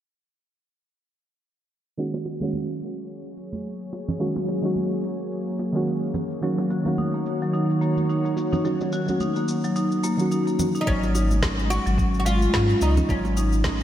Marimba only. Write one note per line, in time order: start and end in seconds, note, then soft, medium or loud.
6.43 6.58 F#3 medium
6.70 6.97 F#4 medium
6.98 7.13 D#4 medium
7.14 7.40 A#3 medium
7.42 7.53 F#3 medium
7.54 7.69 D#4 medium
7.81 7.96 A#3 medium
8.09 8.24 D#4 medium
8.25 8.51 A#3 medium
8.53 8.63 D#4 medium
8.65 8.80 F#3 medium
8.93 9.19 F#4 medium
9.21 9.35 D#4 medium
9.36 9.62 A#3 medium
9.64 9.75 F#3 medium
9.76 9.91 D#4 medium
10.04 10.19 A#3 medium
10.31 10.46 D#4 medium
10.47 10.73 A#3 medium
10.75 10.86 D#4 medium
10.87 11.02 F#3 medium
11.15 11.41 D#4 medium
11.43 11.58 C#4 medium
11.58 11.84 G#3 medium
11.86 11.98 F#3 medium
11.98 12.13 C#4 medium
12.26 12.41 G#3 medium
12.54 12.69 C#4 medium
12.69 12.96 G#3 medium
12.97 13.08 C#4 medium
13.09 13.24 F#3 medium
13.37 13.64 D#4 medium
13.64 13.80 C#4 medium